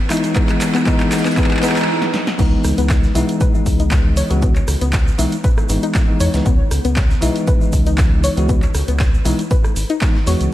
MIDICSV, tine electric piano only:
0, 0, Header, 1, 2, 480
1, 0, Start_track
1, 0, Key_signature, 4, "minor"
1, 0, Tempo, 508475
1, 336, Time_signature, 4, 2, 24, 8
1, 9945, End_track
2, 0, Start_track
2, 0, Title_t, "Tine electric piano"
2, 0, Program_c, 0, 4
2, 87, Note_on_c, 0, 52, 99
2, 93, Note_on_c, 0, 56, 89
2, 98, Note_on_c, 0, 59, 88
2, 104, Note_on_c, 0, 63, 109
2, 314, Note_off_c, 0, 52, 0
2, 317, Note_off_c, 0, 56, 0
2, 319, Note_off_c, 0, 59, 0
2, 322, Note_off_c, 0, 63, 0
2, 328, Note_on_c, 0, 52, 92
2, 334, Note_on_c, 0, 56, 87
2, 339, Note_on_c, 0, 59, 88
2, 344, Note_on_c, 0, 63, 106
2, 794, Note_off_c, 0, 52, 0
2, 797, Note_off_c, 0, 56, 0
2, 800, Note_off_c, 0, 59, 0
2, 802, Note_off_c, 0, 63, 0
2, 808, Note_on_c, 0, 52, 99
2, 813, Note_on_c, 0, 56, 90
2, 819, Note_on_c, 0, 59, 88
2, 825, Note_on_c, 0, 63, 111
2, 1274, Note_off_c, 0, 52, 0
2, 1277, Note_off_c, 0, 56, 0
2, 1280, Note_off_c, 0, 59, 0
2, 1283, Note_off_c, 0, 63, 0
2, 1287, Note_on_c, 0, 52, 101
2, 1293, Note_on_c, 0, 56, 94
2, 1299, Note_on_c, 0, 59, 93
2, 1304, Note_on_c, 0, 63, 108
2, 1514, Note_off_c, 0, 52, 0
2, 1517, Note_off_c, 0, 56, 0
2, 1520, Note_off_c, 0, 59, 0
2, 1522, Note_off_c, 0, 63, 0
2, 1527, Note_on_c, 0, 52, 100
2, 1533, Note_on_c, 0, 56, 95
2, 1538, Note_on_c, 0, 59, 96
2, 1544, Note_on_c, 0, 63, 109
2, 1754, Note_off_c, 0, 52, 0
2, 1757, Note_off_c, 0, 56, 0
2, 1759, Note_off_c, 0, 59, 0
2, 1762, Note_off_c, 0, 63, 0
2, 2247, Note_on_c, 0, 52, 98
2, 2253, Note_on_c, 0, 56, 92
2, 2259, Note_on_c, 0, 59, 91
2, 2264, Note_on_c, 0, 63, 109
2, 2927, Note_off_c, 0, 52, 0
2, 2930, Note_off_c, 0, 56, 0
2, 2933, Note_off_c, 0, 59, 0
2, 2935, Note_off_c, 0, 63, 0
2, 2967, Note_on_c, 0, 52, 96
2, 2973, Note_on_c, 0, 56, 91
2, 2978, Note_on_c, 0, 59, 92
2, 2984, Note_on_c, 0, 63, 111
2, 4029, Note_off_c, 0, 52, 0
2, 4032, Note_off_c, 0, 56, 0
2, 4035, Note_off_c, 0, 59, 0
2, 4037, Note_off_c, 0, 63, 0
2, 4060, Note_on_c, 0, 52, 94
2, 4063, Note_on_c, 0, 56, 86
2, 4065, Note_on_c, 0, 59, 86
2, 4068, Note_on_c, 0, 66, 107
2, 4266, Note_off_c, 0, 52, 0
2, 4267, Note_off_c, 0, 56, 0
2, 4268, Note_off_c, 0, 59, 0
2, 4270, Note_off_c, 0, 66, 0
2, 4892, Note_on_c, 0, 52, 99
2, 4894, Note_on_c, 0, 56, 91
2, 4897, Note_on_c, 0, 59, 89
2, 4900, Note_on_c, 0, 63, 104
2, 5030, Note_off_c, 0, 52, 0
2, 5032, Note_off_c, 0, 56, 0
2, 5033, Note_off_c, 0, 59, 0
2, 5034, Note_off_c, 0, 63, 0
2, 5372, Note_on_c, 0, 52, 91
2, 5375, Note_on_c, 0, 56, 83
2, 5377, Note_on_c, 0, 59, 83
2, 5381, Note_on_c, 0, 63, 97
2, 5712, Note_off_c, 0, 52, 0
2, 5713, Note_off_c, 0, 56, 0
2, 5714, Note_off_c, 0, 59, 0
2, 5716, Note_off_c, 0, 63, 0
2, 5740, Note_on_c, 0, 52, 78
2, 5743, Note_on_c, 0, 56, 72
2, 5746, Note_on_c, 0, 59, 73
2, 5748, Note_on_c, 0, 63, 91
2, 5952, Note_off_c, 0, 52, 0
2, 5953, Note_off_c, 0, 56, 0
2, 5954, Note_off_c, 0, 59, 0
2, 5956, Note_off_c, 0, 63, 0
2, 5980, Note_on_c, 0, 52, 78
2, 5983, Note_on_c, 0, 56, 76
2, 5986, Note_on_c, 0, 59, 73
2, 5989, Note_on_c, 0, 63, 92
2, 6103, Note_off_c, 0, 52, 0
2, 6105, Note_off_c, 0, 56, 0
2, 6106, Note_off_c, 0, 59, 0
2, 6108, Note_off_c, 0, 63, 0
2, 6808, Note_on_c, 0, 52, 102
2, 6813, Note_on_c, 0, 56, 94
2, 6819, Note_on_c, 0, 59, 94
2, 6824, Note_on_c, 0, 63, 113
2, 7869, Note_off_c, 0, 52, 0
2, 7872, Note_off_c, 0, 56, 0
2, 7875, Note_off_c, 0, 59, 0
2, 7878, Note_off_c, 0, 63, 0
2, 7900, Note_on_c, 0, 52, 95
2, 7903, Note_on_c, 0, 56, 85
2, 7905, Note_on_c, 0, 59, 86
2, 7908, Note_on_c, 0, 66, 104
2, 8106, Note_off_c, 0, 52, 0
2, 8107, Note_off_c, 0, 56, 0
2, 8108, Note_off_c, 0, 59, 0
2, 8110, Note_off_c, 0, 66, 0
2, 8732, Note_on_c, 0, 52, 97
2, 8734, Note_on_c, 0, 56, 85
2, 8737, Note_on_c, 0, 59, 93
2, 8740, Note_on_c, 0, 63, 107
2, 8870, Note_off_c, 0, 52, 0
2, 8872, Note_off_c, 0, 56, 0
2, 8873, Note_off_c, 0, 59, 0
2, 8875, Note_off_c, 0, 63, 0
2, 9451, Note_on_c, 0, 52, 87
2, 9454, Note_on_c, 0, 56, 77
2, 9457, Note_on_c, 0, 59, 77
2, 9460, Note_on_c, 0, 63, 96
2, 9590, Note_off_c, 0, 52, 0
2, 9591, Note_off_c, 0, 56, 0
2, 9593, Note_off_c, 0, 59, 0
2, 9594, Note_off_c, 0, 63, 0
2, 9687, Note_on_c, 0, 52, 83
2, 9693, Note_on_c, 0, 56, 77
2, 9698, Note_on_c, 0, 59, 78
2, 9704, Note_on_c, 0, 66, 96
2, 9945, Note_off_c, 0, 52, 0
2, 9945, Note_off_c, 0, 56, 0
2, 9945, Note_off_c, 0, 59, 0
2, 9945, Note_off_c, 0, 66, 0
2, 9945, End_track
0, 0, End_of_file